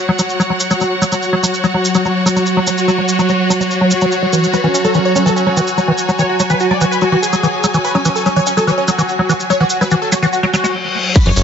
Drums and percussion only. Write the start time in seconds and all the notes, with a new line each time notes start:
0.19 maracas
0.29 maracas
0.40 maracas
0.60 maracas
0.71 maracas
0.80 maracas
1.02 maracas
1.12 maracas
1.22 maracas
1.44 maracas
1.54 maracas
1.64 maracas
1.85 maracas
1.95 maracas
2.05 maracas
2.26 maracas
2.36 maracas
2.46 maracas
2.67 maracas
2.78 maracas
2.88 maracas
3.08 maracas
3.19 maracas
3.29 maracas
3.51 maracas
3.61 maracas
3.71 maracas
3.91 maracas
4.01 maracas
4.12 maracas
4.33 maracas
4.44 maracas
4.53 maracas
4.75 maracas
4.84 maracas
4.94 maracas
5.16 maracas
5.27 maracas
5.37 maracas
5.57 maracas
5.67 maracas
5.78 maracas
5.98 maracas
6.09 maracas
6.19 maracas
6.40 maracas
6.50 maracas
6.60 maracas
6.81 maracas
6.92 maracas
7.01 maracas
7.23 maracas
7.33 maracas
7.43 maracas
7.64 maracas
7.74 maracas
7.84 maracas
8.05 maracas
8.16 maracas
8.26 maracas
8.46 maracas
8.57 maracas
8.68 maracas
8.88 maracas
8.99 maracas
9.09 maracas
9.29 maracas
9.40 maracas
9.50 maracas
9.70 maracas
9.82 maracas
9.91 maracas
10.12 maracas
10.23 maracas
10.33 maracas
10.54 maracas
10.64 maracas
11.16 kick, closed hi-hat, crash, maracas
11.26 closed hi-hat
11.36 open hi-hat, maracas